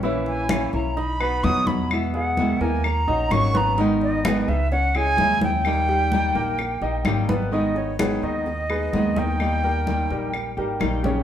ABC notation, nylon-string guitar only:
X:1
M:4/4
L:1/8
Q:1/4=128
K:D#phr
V:1 name="Nylon-string guitar"
[E,A,CE]2 [E,A,CE] [A,CE] z [B,DF] [B,,F,B,DF]2 | [B,,G,B,E]2 [B,,D,G,B,E] [G,B,E] z [A,CF] [D,A,CF]2 | [D,G,B,DG]2 [D,G,B,DG] [B,DG] z [G,CE] [C,G,CE]2 | [D,=G,A,D=G]2 [D,G,A,DG] [A,DG] z [A,DG] [D,G,A,DG]2 |
[K:G#m] [D,G,B,DG] [B,DG] [D,G,B,DG]2 z [B,DG] [D,G,B,DG] [B,DG] | [D,=G,A,D=G] [A,DG] [D,G,A,DG]2 z [A,DG] [D,G,A,DG] [A,DG] |]